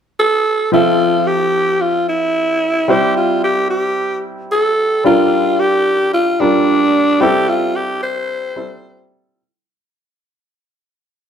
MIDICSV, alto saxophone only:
0, 0, Header, 1, 2, 480
1, 0, Start_track
1, 0, Key_signature, -1, "major"
1, 0, Tempo, 540541
1, 647, Time_signature, 4, 2, 24, 8
1, 10026, End_track
2, 0, Start_track
2, 0, Title_t, "Alto saxophone"
2, 0, Program_c, 0, 65
2, 174, Note_on_c, 0, 69, 104
2, 617, Note_off_c, 0, 69, 0
2, 654, Note_on_c, 0, 65, 102
2, 1127, Note_on_c, 0, 67, 93
2, 1140, Note_off_c, 0, 65, 0
2, 1609, Note_on_c, 0, 65, 85
2, 1622, Note_off_c, 0, 67, 0
2, 1848, Note_off_c, 0, 65, 0
2, 1852, Note_on_c, 0, 64, 84
2, 2571, Note_on_c, 0, 67, 93
2, 2584, Note_off_c, 0, 64, 0
2, 2807, Note_off_c, 0, 67, 0
2, 2812, Note_on_c, 0, 65, 75
2, 3033, Note_off_c, 0, 65, 0
2, 3054, Note_on_c, 0, 67, 87
2, 3274, Note_off_c, 0, 67, 0
2, 3289, Note_on_c, 0, 67, 77
2, 3735, Note_off_c, 0, 67, 0
2, 4011, Note_on_c, 0, 69, 87
2, 4456, Note_off_c, 0, 69, 0
2, 4489, Note_on_c, 0, 65, 89
2, 4970, Note_on_c, 0, 67, 95
2, 4983, Note_off_c, 0, 65, 0
2, 5443, Note_off_c, 0, 67, 0
2, 5448, Note_on_c, 0, 65, 91
2, 5688, Note_on_c, 0, 62, 93
2, 5701, Note_off_c, 0, 65, 0
2, 6405, Note_on_c, 0, 67, 99
2, 6419, Note_off_c, 0, 62, 0
2, 6648, Note_on_c, 0, 65, 85
2, 6662, Note_off_c, 0, 67, 0
2, 6888, Note_on_c, 0, 67, 94
2, 6902, Note_off_c, 0, 65, 0
2, 7123, Note_off_c, 0, 67, 0
2, 7129, Note_on_c, 0, 72, 93
2, 8052, Note_off_c, 0, 72, 0
2, 10026, End_track
0, 0, End_of_file